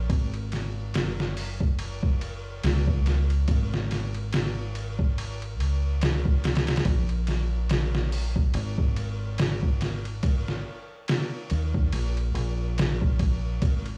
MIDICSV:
0, 0, Header, 1, 3, 480
1, 0, Start_track
1, 0, Tempo, 845070
1, 54, Time_signature, 4, 2, 24, 8
1, 7938, End_track
2, 0, Start_track
2, 0, Title_t, "Fingered electric bass"
2, 0, Program_c, 0, 33
2, 54, Note_on_c, 0, 32, 98
2, 535, Note_off_c, 0, 32, 0
2, 535, Note_on_c, 0, 30, 85
2, 1475, Note_off_c, 0, 30, 0
2, 1498, Note_on_c, 0, 37, 95
2, 1956, Note_off_c, 0, 37, 0
2, 1979, Note_on_c, 0, 32, 94
2, 3177, Note_off_c, 0, 32, 0
2, 3177, Note_on_c, 0, 37, 97
2, 3875, Note_off_c, 0, 37, 0
2, 3891, Note_on_c, 0, 34, 100
2, 4832, Note_off_c, 0, 34, 0
2, 4853, Note_on_c, 0, 32, 91
2, 6033, Note_off_c, 0, 32, 0
2, 6538, Note_on_c, 0, 39, 87
2, 6751, Note_off_c, 0, 39, 0
2, 6775, Note_on_c, 0, 34, 92
2, 6990, Note_off_c, 0, 34, 0
2, 7011, Note_on_c, 0, 34, 103
2, 7712, Note_off_c, 0, 34, 0
2, 7735, Note_on_c, 0, 32, 99
2, 7938, Note_off_c, 0, 32, 0
2, 7938, End_track
3, 0, Start_track
3, 0, Title_t, "Drums"
3, 55, Note_on_c, 9, 36, 111
3, 55, Note_on_c, 9, 51, 78
3, 111, Note_off_c, 9, 36, 0
3, 112, Note_off_c, 9, 51, 0
3, 191, Note_on_c, 9, 51, 43
3, 247, Note_off_c, 9, 51, 0
3, 295, Note_on_c, 9, 51, 59
3, 302, Note_on_c, 9, 38, 37
3, 352, Note_off_c, 9, 51, 0
3, 359, Note_off_c, 9, 38, 0
3, 535, Note_on_c, 9, 51, 84
3, 542, Note_on_c, 9, 38, 104
3, 591, Note_off_c, 9, 51, 0
3, 599, Note_off_c, 9, 38, 0
3, 681, Note_on_c, 9, 38, 57
3, 738, Note_off_c, 9, 38, 0
3, 777, Note_on_c, 9, 46, 79
3, 834, Note_off_c, 9, 46, 0
3, 911, Note_on_c, 9, 36, 85
3, 968, Note_off_c, 9, 36, 0
3, 1015, Note_on_c, 9, 51, 79
3, 1071, Note_off_c, 9, 51, 0
3, 1152, Note_on_c, 9, 36, 92
3, 1209, Note_off_c, 9, 36, 0
3, 1257, Note_on_c, 9, 51, 65
3, 1313, Note_off_c, 9, 51, 0
3, 1496, Note_on_c, 9, 51, 93
3, 1504, Note_on_c, 9, 38, 109
3, 1553, Note_off_c, 9, 51, 0
3, 1561, Note_off_c, 9, 38, 0
3, 1633, Note_on_c, 9, 36, 95
3, 1690, Note_off_c, 9, 36, 0
3, 1738, Note_on_c, 9, 51, 66
3, 1745, Note_on_c, 9, 38, 51
3, 1794, Note_off_c, 9, 51, 0
3, 1802, Note_off_c, 9, 38, 0
3, 1875, Note_on_c, 9, 51, 41
3, 1932, Note_off_c, 9, 51, 0
3, 1975, Note_on_c, 9, 51, 85
3, 1977, Note_on_c, 9, 36, 107
3, 2032, Note_off_c, 9, 51, 0
3, 2034, Note_off_c, 9, 36, 0
3, 2122, Note_on_c, 9, 38, 47
3, 2179, Note_off_c, 9, 38, 0
3, 2220, Note_on_c, 9, 51, 65
3, 2227, Note_on_c, 9, 38, 47
3, 2277, Note_off_c, 9, 51, 0
3, 2284, Note_off_c, 9, 38, 0
3, 2354, Note_on_c, 9, 51, 44
3, 2411, Note_off_c, 9, 51, 0
3, 2457, Note_on_c, 9, 51, 86
3, 2464, Note_on_c, 9, 38, 113
3, 2514, Note_off_c, 9, 51, 0
3, 2521, Note_off_c, 9, 38, 0
3, 2699, Note_on_c, 9, 51, 69
3, 2756, Note_off_c, 9, 51, 0
3, 2833, Note_on_c, 9, 36, 89
3, 2890, Note_off_c, 9, 36, 0
3, 2943, Note_on_c, 9, 51, 87
3, 3000, Note_off_c, 9, 51, 0
3, 3079, Note_on_c, 9, 51, 44
3, 3136, Note_off_c, 9, 51, 0
3, 3182, Note_on_c, 9, 51, 67
3, 3239, Note_off_c, 9, 51, 0
3, 3416, Note_on_c, 9, 51, 89
3, 3424, Note_on_c, 9, 38, 113
3, 3473, Note_off_c, 9, 51, 0
3, 3480, Note_off_c, 9, 38, 0
3, 3551, Note_on_c, 9, 36, 89
3, 3608, Note_off_c, 9, 36, 0
3, 3657, Note_on_c, 9, 51, 63
3, 3665, Note_on_c, 9, 38, 88
3, 3714, Note_off_c, 9, 51, 0
3, 3721, Note_off_c, 9, 38, 0
3, 3722, Note_on_c, 9, 51, 68
3, 3730, Note_on_c, 9, 38, 85
3, 3779, Note_off_c, 9, 51, 0
3, 3787, Note_off_c, 9, 38, 0
3, 3789, Note_on_c, 9, 51, 67
3, 3797, Note_on_c, 9, 38, 87
3, 3840, Note_off_c, 9, 51, 0
3, 3840, Note_on_c, 9, 51, 68
3, 3847, Note_off_c, 9, 38, 0
3, 3847, Note_on_c, 9, 38, 88
3, 3891, Note_off_c, 9, 51, 0
3, 3891, Note_on_c, 9, 51, 83
3, 3892, Note_on_c, 9, 36, 103
3, 3904, Note_off_c, 9, 38, 0
3, 3948, Note_off_c, 9, 51, 0
3, 3949, Note_off_c, 9, 36, 0
3, 4027, Note_on_c, 9, 51, 41
3, 4084, Note_off_c, 9, 51, 0
3, 4129, Note_on_c, 9, 51, 62
3, 4137, Note_on_c, 9, 38, 40
3, 4186, Note_off_c, 9, 51, 0
3, 4194, Note_off_c, 9, 38, 0
3, 4370, Note_on_c, 9, 51, 86
3, 4378, Note_on_c, 9, 38, 105
3, 4427, Note_off_c, 9, 51, 0
3, 4434, Note_off_c, 9, 38, 0
3, 4514, Note_on_c, 9, 38, 54
3, 4570, Note_off_c, 9, 38, 0
3, 4614, Note_on_c, 9, 46, 75
3, 4670, Note_off_c, 9, 46, 0
3, 4747, Note_on_c, 9, 36, 95
3, 4804, Note_off_c, 9, 36, 0
3, 4849, Note_on_c, 9, 51, 85
3, 4906, Note_off_c, 9, 51, 0
3, 4987, Note_on_c, 9, 36, 94
3, 5044, Note_off_c, 9, 36, 0
3, 5092, Note_on_c, 9, 51, 67
3, 5148, Note_off_c, 9, 51, 0
3, 5328, Note_on_c, 9, 51, 87
3, 5336, Note_on_c, 9, 38, 118
3, 5385, Note_off_c, 9, 51, 0
3, 5393, Note_off_c, 9, 38, 0
3, 5468, Note_on_c, 9, 36, 96
3, 5524, Note_off_c, 9, 36, 0
3, 5570, Note_on_c, 9, 51, 70
3, 5578, Note_on_c, 9, 38, 51
3, 5627, Note_off_c, 9, 51, 0
3, 5635, Note_off_c, 9, 38, 0
3, 5709, Note_on_c, 9, 51, 44
3, 5766, Note_off_c, 9, 51, 0
3, 5810, Note_on_c, 9, 51, 85
3, 5812, Note_on_c, 9, 36, 111
3, 5867, Note_off_c, 9, 51, 0
3, 5868, Note_off_c, 9, 36, 0
3, 5954, Note_on_c, 9, 38, 46
3, 6011, Note_off_c, 9, 38, 0
3, 6293, Note_on_c, 9, 51, 79
3, 6301, Note_on_c, 9, 38, 120
3, 6350, Note_off_c, 9, 51, 0
3, 6358, Note_off_c, 9, 38, 0
3, 6531, Note_on_c, 9, 51, 68
3, 6587, Note_off_c, 9, 51, 0
3, 6670, Note_on_c, 9, 36, 86
3, 6727, Note_off_c, 9, 36, 0
3, 6773, Note_on_c, 9, 51, 89
3, 6830, Note_off_c, 9, 51, 0
3, 6913, Note_on_c, 9, 51, 43
3, 6970, Note_off_c, 9, 51, 0
3, 7016, Note_on_c, 9, 51, 66
3, 7073, Note_off_c, 9, 51, 0
3, 7259, Note_on_c, 9, 51, 84
3, 7266, Note_on_c, 9, 38, 116
3, 7315, Note_off_c, 9, 51, 0
3, 7323, Note_off_c, 9, 38, 0
3, 7392, Note_on_c, 9, 36, 94
3, 7449, Note_off_c, 9, 36, 0
3, 7494, Note_on_c, 9, 51, 71
3, 7495, Note_on_c, 9, 36, 98
3, 7550, Note_off_c, 9, 51, 0
3, 7552, Note_off_c, 9, 36, 0
3, 7735, Note_on_c, 9, 51, 83
3, 7736, Note_on_c, 9, 36, 107
3, 7792, Note_off_c, 9, 36, 0
3, 7792, Note_off_c, 9, 51, 0
3, 7870, Note_on_c, 9, 51, 43
3, 7927, Note_off_c, 9, 51, 0
3, 7938, End_track
0, 0, End_of_file